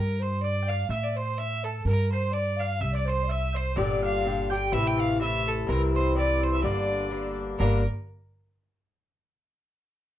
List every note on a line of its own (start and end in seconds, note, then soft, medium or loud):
0.00 0.88 G2 medium
0.00 0.19 A#4 medium
0.00 0.21 A#4 medium
0.00 0.23 A#4 medium
0.20 0.43 C5 medium
0.20 0.42 C5 medium
0.20 0.43 C5 medium
0.41 0.69 D5 medium
0.41 0.70 D5 loud
0.41 0.63 D5 medium
0.63 0.69 G5 medium
0.67 0.88 F5 medium
0.67 0.90 F5 loud
0.67 0.89 F5 medium
0.88 1.83 A2 medium
0.88 1.01 E5 medium
0.88 1.14 E5 medium
0.88 1.05 E5 medium
1.02 1.17 D5 medium
1.02 1.18 D5 medium
1.16 1.36 C5 medium
1.16 1.39 C5 loud
1.16 1.37 C5 medium
1.37 1.65 E5 medium
1.37 1.66 E5 loud
1.37 1.66 E5 medium
1.64 1.84 A4 medium
1.64 1.86 A4 medium
1.64 1.85 A4 medium
1.85 2.79 G2 medium
1.85 2.10 A#4 medium
1.85 2.10 A#4 loud
1.85 2.11 A#4 medium
2.12 2.33 C5 medium
2.12 2.35 C5 medium
2.12 2.32 C5 medium
2.31 2.58 D5 medium
2.31 2.61 D5 loud
2.31 2.61 D5 medium
2.57 2.81 F5 medium
2.57 2.83 F5 loud
2.57 2.81 F5 medium
2.79 3.75 C2 medium
2.79 2.91 E5 medium
2.79 2.93 E5 medium
2.79 2.94 E5 loud
2.92 3.07 D5 medium
2.92 3.11 D5 medium
3.05 3.24 C5 medium
3.05 3.28 C5 medium
3.10 3.33 C5 medium
3.23 3.29 D5 medium
3.27 3.56 E5 medium
3.27 3.54 E5 medium
3.27 3.58 E5 loud
3.55 3.75 C5 medium
3.55 3.78 C5 loud
3.76 4.71 G1 loud
3.76 4.23 A#2 medium
3.76 4.24 D3 medium
3.76 4.25 D4 medium
3.76 4.25 G4 loud
3.76 4.01 D5 loud
3.76 4.01 D5 medium
3.76 4.03 D5 loud
4.02 4.47 F5 loud
4.02 4.52 F5 medium
4.02 4.48 F5 loud
4.24 4.51 A#2 medium
4.24 4.52 D3 medium
4.24 4.51 D4 medium
4.24 4.50 G4 medium
4.50 4.73 D3 soft
4.50 4.73 D4 medium
4.50 4.73 G4 medium
4.50 4.71 G5 medium
4.50 4.74 G5 medium
4.50 4.74 G5 loud
4.72 5.67 A1 medium
4.72 5.18 C3 medium
4.72 5.19 E3 medium
4.72 5.20 A3 medium
4.72 5.20 E4 loud
4.72 4.85 E5 loud
4.72 5.01 E5 loud
4.72 4.89 E5 loud
4.86 4.97 G5 medium
4.86 5.01 G5 loud
4.98 5.19 F5 medium
4.98 5.20 F5 medium
4.98 5.21 F5 loud
5.18 5.66 C3 medium
5.18 5.67 E3 medium
5.18 5.67 A3 medium
5.18 5.68 E4 medium
5.18 5.45 E5 medium
5.18 5.70 E5 medium
5.18 5.50 E5 loud
5.46 5.70 A4 medium
5.46 5.69 A4 loud
5.67 6.63 C2 medium
5.67 6.14 G2 medium
5.67 6.15 E3 medium
5.67 6.16 C4 medium
5.67 6.16 E4 medium
5.67 5.94 A#4 medium
5.67 5.93 A#4 loud
5.67 5.81 A#4 loud
5.95 6.17 C5 medium
5.95 6.15 C5 loud
5.95 6.16 C5 medium
6.15 6.61 G2 medium
6.15 6.63 E3 medium
6.15 6.63 C4 medium
6.15 6.64 E4 medium
6.15 6.43 D5 medium
6.15 6.41 D5 medium
6.15 6.45 D5 loud
6.43 6.54 C5 medium
6.43 6.53 C5 medium
6.53 6.63 E5 loud
6.53 6.66 E5 medium
6.53 6.64 E5 medium
6.62 7.58 G1 medium
6.62 7.09 G2 medium
6.62 7.11 D3 medium
6.62 7.12 A#3 medium
6.62 7.13 D4 medium
6.62 7.34 D5 loud
6.62 7.39 D5 medium
6.62 7.35 D5 medium
7.10 7.58 G2 medium
7.10 7.59 D3 medium
7.10 7.60 A#3 medium
7.10 7.61 D4 medium
7.58 7.85 G1 loud
7.58 7.81 G2 medium
7.58 7.81 D3 medium
7.58 7.82 A#3 loud
7.58 7.82 D4 medium
7.58 7.84 A#4 medium
7.58 7.84 A#4 loud
7.58 7.85 A#4 loud